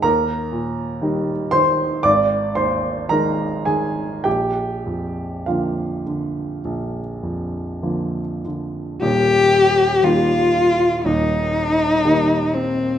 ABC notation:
X:1
M:4/4
L:1/8
Q:1/4=57
K:Eb
V:1 name="Cello"
z8 | z8 | G2 F2 E3 C |]
V:2 name="Grand piano"
[Bb]3 [cc'] [dd'] [cc'] [Bb] [Aa] | [Gg]2 [Ff]4- [Ff] z | z8 |]
V:3 name="Grand piano" clef=bass
E,, B,, [E,G,E] E, A,,, E,, [E,A,E] E, | B,,, F,, [D,F,B,] D, B,,, F,, [D,F,B,] D, | [E,,,E,,]2 [E,G,B,]2 [E,,,E,,]2 [E,G,B,]2 |]